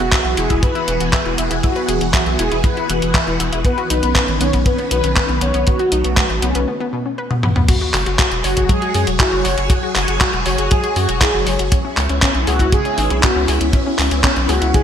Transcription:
Already playing: E3 B3 F#4 G#4
0.00 E1
0.12 E5, kick, clap, closed hi-hat
0.25 B1 E5, closed hi-hat
0.37 E1 E4 G#4, closed hi-hat
0.50 E1 E4, kick, closed hi-hat
0.62 E4 B4, kick, closed hi-hat
0.75 E4, closed hi-hat
0.88 E1 E3, closed hi-hat
1.00 E1 F#4, closed hi-hat
1.13 E5, kick, clap, closed hi-hat
1.26 E1 E4, closed hi-hat
1.38 E1 E4, closed hi-hat
1.51 E1 E4, closed hi-hat
1.63 E4 F#4, kick, closed hi-hat
1.76 B4, closed hi-hat
1.88 E1 F#4 G#4, closed hi-hat
2.01 E1 E4, closed hi-hat
2.14 E5, kick, clap, closed hi-hat
2.26 B1 E5, closed hi-hat
2.39 E1 E4 G#4, closed hi-hat
2.52 E1 E4, closed hi-hat
2.64 E4 B4, kick, closed hi-hat
2.77 E4, closed hi-hat
2.89 E1 E3, closed hi-hat
3.02 E1 F#4, closed hi-hat
3.14 E5, kick, clap, closed hi-hat
3.27 E1 E4, closed hi-hat
3.40 E1 E4, closed hi-hat
3.53 E1 E4, closed hi-hat
3.65 D#3 B3 C#4 B4, kick, closed hi-hat
3.78 F#4, closed hi-hat
3.90 B1 D#4 B4, closed hi-hat
4.03 B1 B3, closed hi-hat
4.15 B4, kick, clap, closed hi-hat
4.28 A1 B4, closed hi-hat
4.41 B1 B3 C#5, closed hi-hat
4.53 B1 B3, kick, closed hi-hat
4.66 B3 B4, kick, closed hi-hat
4.79 B3, closed hi-hat
4.91 B1 B2 B4, closed hi-hat
5.04 B1 C#4, closed hi-hat
5.16 B4, kick, clap, closed hi-hat
5.29 B1 B3, closed hi-hat
5.41 B1 B3 C#5, closed hi-hat
5.54 B1 B3, closed hi-hat
5.67 A3 B3 F#4, kick, closed hi-hat
5.79 F#4, closed hi-hat
5.92 B1 D#4 F#4, closed hi-hat
6.04 B1 B3, closed hi-hat
6.17 B4, kick, clap, closed hi-hat
6.30 A1 B4, closed hi-hat
6.42 B1 B3 C#4, closed hi-hat
6.55 B1 B3, closed hi-hat
6.68 B3
6.80 B3
6.93 B2
7.06 C#4
7.18 B4
7.31 B3, high tom
7.43 B3, mid tom
7.56 B3, mid tom
7.68 F#3 F#4 G#4 C#5, kick, closed hi-hat, crash
7.81 F#4
7.94 F#1 F#4, clap, open hi-hat
8.06 F#1 F#4, closed hi-hat
8.19 F#4, kick, clap, closed hi-hat
8.31 E1 F#4, closed hi-hat
8.44 F#1 F#4 C#5, open hi-hat
8.57 F#1 G#4, kick, closed hi-hat
8.69 F#3 G#4, kick, closed hi-hat
8.82 F#4, closed hi-hat
8.94 F#2 G#4, open hi-hat
9.07 E1 F#4, closed hi-hat
9.20 E4 F#4, kick, clap, closed hi-hat
9.33 F#1 F#4
9.45 F#1 C#5, open hi-hat
9.58 F#1 F#4, closed hi-hat
9.70 F#4, kick, closed hi-hat
9.83 F#4
9.95 F#1 F#4, clap, open hi-hat
10.08 F#1 F#4, closed hi-hat
10.21 F#4, kick, clap, closed hi-hat
10.33 E1 F#4, closed hi-hat
10.46 F#1 F#4 C#5, open hi-hat
10.58 F#1 G#4, closed hi-hat
10.71 F#3 G#4, kick, closed hi-hat
10.84 F#4, closed hi-hat
10.96 F#2 F#4 G#4, open hi-hat
11.09 E1 F#4, closed hi-hat
11.21 E4 G#4, kick, clap, closed hi-hat
11.34 F#1 F#4
11.47 F#1 C#5, open hi-hat
11.59 F#1 F#4, closed hi-hat
11.72 B3 C#4 E4, kick, closed hi-hat
11.85 C#4
11.97 C#2 C#4, clap, open hi-hat
12.09 C#2 C#4, closed hi-hat
12.22 C#4, kick, clap, closed hi-hat
12.35 B1 C#4, closed hi-hat
12.47 C#2 F#4 G#4, open hi-hat
12.59 C#2 E4, kick, closed hi-hat
12.72 C#3 G#4, kick, closed hi-hat
12.85 C#4, closed hi-hat
12.98 G#1 D#4 G#4, open hi-hat
13.10 B1 C#4, closed hi-hat
13.23 B3 F#4, kick, clap, closed hi-hat
13.36 C#2 C#4
13.48 C#2 G#4, open hi-hat
13.61 C#2 C#4, closed hi-hat
13.73 C#4, kick, closed hi-hat
13.86 C#4
13.99 C#2 C#4, clap, open hi-hat
14.11 C#2 C#4, closed hi-hat
14.24 C#4, kick, clap, closed hi-hat
14.36 B1 C#4, closed hi-hat
14.49 C#2 F#4 G#4, open hi-hat
14.62 C#2 E4, closed hi-hat
14.74 C#3 G#4, kick, closed hi-hat

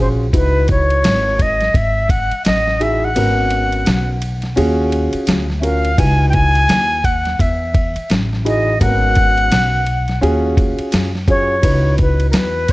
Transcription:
Already playing: A#1 C#4 F4
0.00 F#4 G#4 C5
0.33 C#2 D#4 E4 F#4 B4, kick, ride
0.68 C#5, kick, ride
0.90 ride
1.04 G#1, snare, hi-hat pedal, ride
1.39 D#5, kick, ride
1.61 snare, ride
1.74 G#1 E5, kick, ride
2.09 F#5, kick, ride
2.31 muted upright bass stroke, ride
2.45 A1 D#5, snare, hi-hat pedal, ride
2.67 snare
2.80 D#4 E4 F#4 G#4 E5, ride
3.04 F#5
3.15 G#1 B3 C#4 F#4 A#4, ride
3.50 ride
3.72 ride
3.86 B1, snare, hi-hat pedal, ride
4.22 ride
4.42 snare, ride
4.56 D#2 C#4 F4 F#4 G#4, ride
4.92 ride
5.13 muted upright bass stroke, ride
5.27 D2, snare, hi-hat pedal, ride
5.50 snare
5.60 C#4 F4 F#4 A#4 E5, ride
5.64 F5
5.85 ride
5.98 C#2 D#4 E4 F#4 B4 G#5, kick, ride
6.29 G5, ride
6.34 G#5, kick
6.55 ride
6.69 D#2, snare, hi-hat pedal, ride
7.04 F#5, kick, ride
7.25 snare, ride
7.39 E2 E5, kick, ride
7.74 kick, ride
7.96 muted upright bass stroke, ride
8.10 A1, snare, hi-hat pedal, ride
8.33 snare
8.45 D#4 E4 F#4 G#4 D#5, ride
8.80 G#1 A#3 C#4 F#4 A#4 F#5, kick, ride
8.87 B3
9.15 kick, ride
9.38 ride
9.52 B1, snare, hi-hat pedal, ride
9.87 ride
10.08 snare, ride
10.21 D#2 C#4 F4 F#4 G#4, ride
10.57 kick, ride
10.79 muted upright bass stroke, ride
10.92 F#2, snare, hi-hat pedal, ride
11.15 snare
11.28 C#4 F4 F#4 G#4 C#5, kick, ride
11.62 C#2 D#4 E4 F#4 B4, kick, ride
11.98 B4, kick, ride
12.20 ride
12.31 E2 A#4, snare, hi-hat pedal, ride
12.36 B4
12.68 kick, ride

